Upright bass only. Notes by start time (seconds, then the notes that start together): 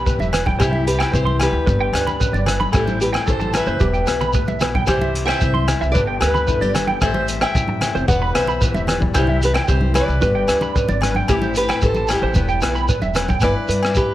Already playing: B1
0.19 E1
0.60 C2
1.14 C2
1.52 D2
1.67 G1
1.93 D2
2.33 G1
2.74 A1
3.28 A1
3.67 F#1
3.81 E1
4.07 B1
4.48 B1
4.88 C2
5.42 C2
5.82 C2
5.95 G1
6.21 D2
6.61 G1
7.02 A1
7.55 A1
7.95 F1
8.09 E1
8.36 B1
8.75 E1
9.15 C2
9.69 C2
10.08 C2
10.22 G1
10.49 D2
10.89 G#1
11.29 A1
11.82 A1
12.22 A1
12.36 E1
12.62 B1
13.03 E1
13.43 G1
13.69 G2